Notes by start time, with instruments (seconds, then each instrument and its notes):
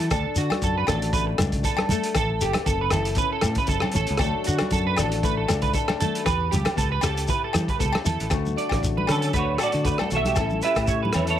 0.00 closed hi-hat
0.11 fingered electric bass D2, steel-string acoustic guitar D3 D4, clean electric guitar A4, kick, cross-stick, closed hi-hat, low conga, low agogo, shekere
0.36 fingered electric bass D3, steel-string acoustic guitar F#4, clean electric guitar F#4, closed hi-hat, shekere
0.50 cross-stick, closed hi-hat, high conga, low agogo
0.62 fingered electric bass F#2, steel-string acoustic guitar F#3, clean electric guitar A4, kick, closed hi-hat, shekere
0.78 clean electric guitar B4
0.87 fingered electric bass A1, steel-string acoustic guitar D4, clean electric guitar A4, cross-stick, closed hi-hat, low conga, low agogo, shekere
1.02 closed hi-hat
1.13 steel-string acoustic guitar A2 A3, clean electric guitar B4, kick, closed hi-hat, shekere
1.27 muted clean electric guitar stroke
1.38 fingered electric bass C#2, steel-string acoustic guitar D4, cross-stick, closed hi-hat, high conga, low agogo, shekere
1.52 kick, closed hi-hat, shekere
1.63 steel-string acoustic guitar F#3, clean electric guitar A4, kick, closed hi-hat, shekere
1.77 cross-stick, high conga, low agogo
1.89 steel-string acoustic guitar A3, clean electric guitar A4, closed hi-hat, high conga, low conga, shekere
2.03 closed hi-hat
2.14 fingered electric bass A1, clean electric guitar A4, muted steel-string acoustic guitar stroke, kick, cross-stick, closed hi-hat, low conga, low agogo, shekere
2.41 fingered electric bass F#1, clean electric guitar G4, steel-string acoustic guitar A4, closed hi-hat, shekere
2.53 cross-stick, closed hi-hat, high conga, low agogo
2.66 fingered electric bass F#1, steel-string acoustic guitar E3, clean electric guitar A4, kick, closed hi-hat, shekere
2.81 clean electric guitar B4
2.90 fingered electric bass F#1, steel-string acoustic guitar E4, clean electric guitar A4, cross-stick, closed hi-hat, low conga, low agogo, shekere
3.05 closed hi-hat
3.15 steel-string acoustic guitar A2 C#4, clean electric guitar B4, kick, closed hi-hat, shekere
3.32 clean electric guitar A4
3.41 fingered electric bass A2, steel-string acoustic guitar E4, cross-stick, closed hi-hat, high conga, low agogo, shekere
3.55 clean electric guitar B4, kick, closed hi-hat, shekere
3.67 fingered electric bass F#1, steel-string acoustic guitar E3, clean electric guitar A4, kick, closed hi-hat, shekere
3.80 cross-stick, high conga, low agogo
3.91 steel-string acoustic guitar C#4, closed hi-hat, high conga, low conga, shekere
3.96 fingered electric bass A1, clean electric guitar A4
4.07 fingered electric bass C#2, closed hi-hat
4.17 fingered electric bass D2, steel-string acoustic guitar D3 F#3 A3, clean electric guitar A4, kick, cross-stick, closed hi-hat, low conga, low agogo, shekere
4.22 steel-string acoustic guitar D4 F#4
4.44 steel-string acoustic guitar F#4, clean electric guitar F#4, closed hi-hat, shekere
4.49 fingered electric bass D3
4.59 cross-stick, closed hi-hat, high conga, low agogo
4.70 fingered electric bass F#2, steel-string acoustic guitar F#3, clean electric guitar A4, kick, closed hi-hat, shekere
4.87 clean electric guitar B4
4.96 fingered electric bass A1, steel-string acoustic guitar D4, clean electric guitar A4, cross-stick, closed hi-hat, low conga, low agogo, shekere
5.12 closed hi-hat
5.23 steel-string acoustic guitar A2 A3, clean electric guitar B4, kick, closed hi-hat, shekere
5.37 clean electric guitar A4
5.48 fingered electric bass C#2, steel-string acoustic guitar D4, cross-stick, closed hi-hat, high conga, low agogo, shekere
5.62 clean electric guitar B4, kick, closed hi-hat, shekere
5.73 steel-string acoustic guitar F#3, clean electric guitar A4, kick, closed hi-hat, shekere
5.88 cross-stick, high conga, low agogo
6.00 steel-string acoustic guitar A3, clean electric guitar A4, closed hi-hat, high conga, low conga, shekere
6.15 closed hi-hat
6.24 fingered electric bass E2, steel-string acoustic guitar E3 G4, clean electric guitar B4, kick, cross-stick, closed hi-hat, low conga, low agogo, shekere
6.51 fingered electric bass C#2, clean electric guitar G4, steel-string acoustic guitar G4, closed hi-hat, high conga, low conga, shekere
6.65 cross-stick, closed hi-hat, high conga, low agogo
6.76 fingered electric bass C#2, steel-string acoustic guitar B3, clean electric guitar A4, kick, closed hi-hat, shekere
6.92 clean electric guitar B4
7.01 fingered electric bass C#2, steel-string acoustic guitar G4, clean electric guitar A4, cross-stick, closed hi-hat, low conga, low agogo, shekere
7.17 closed hi-hat, shekere
7.28 steel-string acoustic guitar B2 E4, clean electric guitar B4, kick, closed hi-hat, shekere
7.44 clean electric guitar A4
7.53 fingered electric bass E3, steel-string acoustic guitar G4, cross-stick, closed hi-hat, high conga, low agogo, shekere
7.68 clean electric guitar B4, kick, closed hi-hat
7.79 fingered electric bass C#2, steel-string acoustic guitar B3, clean electric guitar A4, kick, closed hi-hat, shekere
7.92 cross-stick, high conga, low agogo
8.04 fingered electric bass E2, steel-string acoustic guitar E4, clean electric guitar A4, closed hi-hat, high conga, low conga, shekere
8.20 fingered electric bass A1, closed hi-hat, shekere
8.30 fingered electric bass D2, steel-string acoustic guitar D3 A3 F#4, muted clean electric guitar stroke, muted steel-string acoustic guitar stroke, kick, cross-stick, closed hi-hat, low agogo, shekere
8.46 high conga, shekere
8.56 steel-string acoustic guitar D4, clean electric guitar D5, closed hi-hat
8.69 fingered electric bass A1, kick, cross-stick, closed hi-hat, low agogo, shekere
8.83 kick, closed hi-hat, shekere
8.97 clean electric guitar B4, high conga
9.07 fingered electric bass D3, steel-string acoustic guitar F#3, clean electric guitar C#4 A4, cross-stick, closed hi-hat, low conga, low agogo, shekere
9.21 clean electric guitar A4, closed hi-hat
9.33 fingered electric bass D2, steel-string acoustic guitar A3, clean electric guitar F#4 B4, kick, closed hi-hat, shekere
9.39 clean electric guitar C#5
9.58 steel-string acoustic guitar A2 F#4, clean electric guitar F#4 A4, cross-stick, closed hi-hat, low agogo, shekere
9.63 clean electric guitar D5
9.72 fingered electric bass D3, closed hi-hat
9.85 steel-string acoustic guitar A3, clean electric guitar B4, kick, closed hi-hat, shekere
9.98 clean electric guitar A4, cross-stick, high conga, low agogo, shekere
10.11 fingered electric bass B1, steel-string acoustic guitar F#4, closed hi-hat, low conga, shekere
10.15 clean electric guitar A4 E5
10.25 clean electric guitar G4, closed hi-hat, high conga
10.36 fingered electric bass A1, steel-string acoustic guitar A2 C#4 E4, clean electric guitar A4, kick, cross-stick, closed hi-hat, low agogo, shekere
10.41 steel-string acoustic guitar A4
10.50 high conga, shekere
10.62 steel-string acoustic guitar E4, clean electric guitar G4 B4 E5, closed hi-hat, shekere
10.75 fingered electric bass A2, kick, cross-stick, closed hi-hat, low agogo, shekere
10.87 clean electric guitar C#5, kick, closed hi-hat, shekere
11.03 clean electric guitar B4, high conga
11.13 fingered electric bass E2, steel-string acoustic guitar E3, clean electric guitar E4 C#5, cross-stick, closed hi-hat, low conga, low agogo, shekere
11.27 clean electric guitar E4 A4 C#5, closed hi-hat